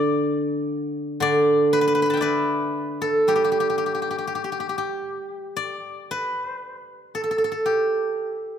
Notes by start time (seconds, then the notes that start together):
Already playing: D3 A4 B4 D5 E5
1.20 D3 D5
1.73 B4
1.81 B4
1.88 B4
1.95 B4
2.02 B4 B5
2.10 B4 G5 A5
2.17 D5 E5
2.22 B4
3.02 A4
3.28 G3 G4
3.36 G4
3.44 G4
3.52 G4
3.60 G4
3.70 G4
3.78 G4
3.86 G4
3.95 G4
4.02 G4
4.11 G4
4.18 G4
4.27 G4
4.35 G4
4.44 G4
4.52 G4
4.60 G4
4.69 G4
4.78 G4
5.57 D5
6.11 B4
7.15 A4
7.24 A4
7.31 A4
7.38 A4
7.44 A4
7.52 A4
7.66 G4